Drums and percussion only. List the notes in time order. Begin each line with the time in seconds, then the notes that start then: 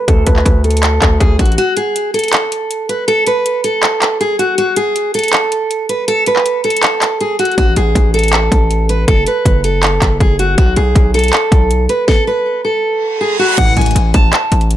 0.08 kick, closed hi-hat
0.27 kick, closed hi-hat
0.36 clap
0.46 kick, closed hi-hat
0.64 closed hi-hat, open hi-hat
0.71 closed hi-hat
0.77 closed hi-hat
0.83 clap, closed hi-hat
1.02 kick, clap, closed hi-hat
1.20 kick, closed hi-hat
1.39 kick, closed hi-hat
1.46 closed hi-hat
1.52 closed hi-hat
1.58 closed hi-hat
1.77 closed hi-hat
1.96 closed hi-hat
2.14 closed hi-hat
2.19 closed hi-hat
2.24 closed hi-hat
2.28 closed hi-hat
2.33 clap, closed hi-hat
2.52 closed hi-hat
2.71 closed hi-hat
2.89 closed hi-hat
3.08 closed hi-hat
3.27 closed hi-hat
3.46 closed hi-hat
3.64 closed hi-hat
3.83 clap, closed hi-hat
4.02 clap, closed hi-hat
4.21 closed hi-hat
4.39 closed hi-hat
4.58 closed hi-hat
4.76 closed hi-hat
4.96 closed hi-hat
5.14 closed hi-hat
5.19 closed hi-hat
5.23 closed hi-hat
5.28 closed hi-hat
5.33 clap, closed hi-hat
5.52 closed hi-hat
5.71 closed hi-hat
5.89 closed hi-hat
6.08 closed hi-hat
6.26 closed hi-hat
6.36 clap
6.46 closed hi-hat
6.64 closed hi-hat, open hi-hat
6.70 closed hi-hat
6.77 closed hi-hat
6.83 clap, closed hi-hat
7.02 clap, closed hi-hat
7.21 closed hi-hat
7.39 closed hi-hat
7.45 closed hi-hat
7.52 closed hi-hat
7.58 kick, closed hi-hat
7.76 closed hi-hat
7.95 kick, closed hi-hat
8.14 closed hi-hat
8.19 closed hi-hat
8.23 closed hi-hat
8.28 closed hi-hat
8.33 clap, closed hi-hat
8.52 kick, closed hi-hat
8.71 closed hi-hat
8.89 closed hi-hat
9.08 kick, closed hi-hat
9.26 closed hi-hat
9.45 kick, closed hi-hat
9.64 closed hi-hat
9.83 clap, closed hi-hat
10.02 kick, clap, closed hi-hat
10.20 kick, closed hi-hat
10.39 closed hi-hat
10.58 kick, closed hi-hat
10.76 closed hi-hat
10.95 kick, closed hi-hat
11.14 closed hi-hat
11.19 closed hi-hat
11.24 closed hi-hat
11.28 closed hi-hat
11.33 clap, closed hi-hat
11.52 kick, closed hi-hat
11.71 closed hi-hat
11.89 closed hi-hat
12.08 kick, snare
13.58 kick, closed hi-hat, crash
13.77 closed hi-hat
13.81 closed hi-hat
13.86 closed hi-hat
13.91 closed hi-hat
13.96 closed hi-hat
14.14 kick, closed hi-hat
14.33 clap, closed hi-hat
14.52 closed hi-hat
14.61 closed hi-hat
14.71 closed hi-hat